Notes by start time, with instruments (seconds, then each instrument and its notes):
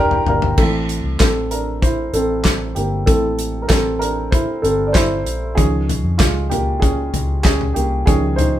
Already playing: fingered electric bass F1, upright piano G2 D3 D4 G4 A#4 C5 A#5 C6
0.11 upright piano G5, floor tom
0.26 fingered electric bass G1, upright piano A#3 D4 G4 A#4 F5, floor tom
0.42 floor tom
0.58 fingered electric bass A1, upright piano E3 A3 C4 A4, kick, crash
0.89 closed hi-hat
1.04 fingered electric bass C2
1.20 fingered electric bass A1, upright piano C4 A4, kick, snare, clap, closed hi-hat
1.51 upright piano D4 A#4, closed hi-hat
1.82 upright piano E4 C5, kick, closed hi-hat
2.13 fingered electric bass A1, upright piano C4 A4, closed hi-hat
2.44 kick, snare, clap, closed hi-hat
2.75 fingered electric bass G1, upright piano A#3 G4, closed hi-hat
3.06 fingered electric bass A1, upright piano E3 A3 C4 A4, kick, closed hi-hat
3.39 closed hi-hat
3.62 upright piano A#4
3.68 fingered electric bass A1, upright piano C4 A4, kick, snare, clap, closed hi-hat
3.99 upright piano D4 A#4, closed hi-hat
4.31 upright piano E4 C5, kick, closed hi-hat
4.62 fingered electric bass G1, upright piano C4 A4, closed hi-hat
4.87 upright piano D5
4.93 upright piano E4 C5, kick, snare, clap, closed hi-hat
5.26 fingered electric bass A#1, closed hi-hat
5.55 fingered electric bass C#2, upright piano D#3 F3 C#4 G#4, kick, closed hi-hat
5.89 closed hi-hat, floor tom
6.04 fingered electric bass F2
6.18 fingered electric bass C#2, upright piano G#3 F4, kick, snare, clap, closed hi-hat
6.50 upright piano A#3 G4, closed hi-hat, floor tom
6.80 upright piano C#4 G#4, kick, closed hi-hat
7.13 fingered electric bass C#2, closed hi-hat, floor tom
7.43 upright piano C#4 G#4, kick, snare, clap, closed hi-hat
7.61 floor tom
7.74 fingered electric bass C2, upright piano A#3 G4, closed hi-hat
8.06 fingered electric bass C#2, upright piano D#3 F3 C#4 G#4, kick, closed hi-hat
8.36 upright piano D#4 C5, closed hi-hat, floor tom